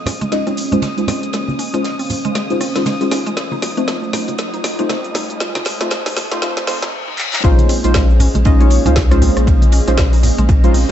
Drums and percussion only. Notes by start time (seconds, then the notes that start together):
0.06 cross-stick, snare, open hi-hat, ride, low conga, shaker
0.21 closed hi-hat, high bongo, high conga, shaker
0.32 snare, closed hi-hat, ride, shaker
0.47 closed hi-hat, high bongo, shaker
0.57 open hi-hat, ride, shaker
0.72 closed hi-hat, low conga, shaker
0.82 snare, closed hi-hat, ride, high bongo, high conga, shaker
0.98 closed hi-hat, shaker
1.07 cross-stick, snare, open hi-hat, ride, high bongo, low conga, shaker
1.23 closed hi-hat, shaker
1.33 snare, closed hi-hat, ride, shaker
1.48 high bongo, high conga, shaker
1.59 open hi-hat, ride, shaker
1.74 closed hi-hat, high bongo, shaker
1.84 snare, closed hi-hat, ride, shaker
1.99 open hi-hat, shaker
2.10 open hi-hat, ride, high bongo, low conga, shaker
2.25 closed hi-hat, high conga, shaker
2.35 snare, closed hi-hat, ride, high bongo, shaker
2.50 closed hi-hat, shaker
2.60 cross-stick, open hi-hat, shaker
2.75 snare, closed hi-hat, high bongo, shaker
2.86 snare, closed hi-hat, ride, high conga, shaker
3.01 closed hi-hat, high bongo, shaker
3.11 snare, open hi-hat, ride, shaker
3.26 closed hi-hat, ride, shaker
3.37 snare, closed hi-hat, ride, high bongo, shaker
3.51 high conga, shaker
3.62 snare, open hi-hat, ride, high bongo, shaker
3.77 closed hi-hat, shaker
3.88 snare, closed hi-hat, ride, shaker
4.02 high bongo, shaker
4.13 snare, open hi-hat, ride, low conga, shaker
4.28 closed hi-hat, high bongo, high conga, shaker
4.38 snare, closed hi-hat, ride, shaker
4.54 closed hi-hat, shaker
4.64 snare, open hi-hat, ride, high bongo, shaker
4.79 closed hi-hat, low conga, shaker
4.89 snare, closed hi-hat, ride, high bongo, high conga, shaker
5.04 closed hi-hat, shaker
5.14 snare, open hi-hat, ride, low conga, shaker
5.29 closed hi-hat, high bongo, shaker
5.40 snare, closed hi-hat, ride, shaker
5.55 snare, closed hi-hat, high bongo, high conga, shaker
5.65 snare, open hi-hat, ride, shaker
5.81 snare, closed hi-hat, shaker
5.90 snare, closed hi-hat, ride, high bongo, shaker
6.06 snare, open hi-hat, shaker
6.16 snare, open hi-hat, ride, high bongo, low conga, shaker
6.32 snare, closed hi-hat, high conga, shaker
6.42 snare, closed hi-hat, ride, shaker
6.57 snare, closed hi-hat, high bongo, shaker
6.67 snare, open hi-hat, shaker
6.82 snare, closed hi-hat, high bongo, shaker
7.18 clap
7.33 clap
7.44 kick, ride, shaker
7.58 closed hi-hat, high conga, shaker
7.69 open hi-hat, ride, high bongo, shaker
7.84 closed hi-hat, shaker
7.94 kick, snare, ride, high bongo, shaker
8.10 shaker
8.20 open hi-hat, ride, low conga, shaker
8.34 closed hi-hat, high bongo, high conga, shaker
8.45 kick, ride, shaker
8.60 closed hi-hat, high bongo, shaker
8.70 open hi-hat, ride, shaker
8.86 closed hi-hat, low conga, shaker
8.96 kick, snare, ride, high bongo, high conga, shaker
9.11 cross-stick, closed hi-hat, shaker
9.22 open hi-hat, ride, high bongo, low conga, shaker
9.37 cross-stick, closed hi-hat, shaker
9.47 kick, ride, shaker
9.62 closed hi-hat, high bongo, high conga, shaker
9.72 open hi-hat, ride, shaker
9.88 closed hi-hat, high bongo, shaker
9.97 kick, snare, ride, shaker
10.13 open hi-hat, shaker
10.23 open hi-hat, ride, high bongo, low conga, shaker
10.38 closed hi-hat, high conga, shaker
10.49 kick, ride, high bongo, shaker
10.64 closed hi-hat, shaker
10.74 open hi-hat, shaker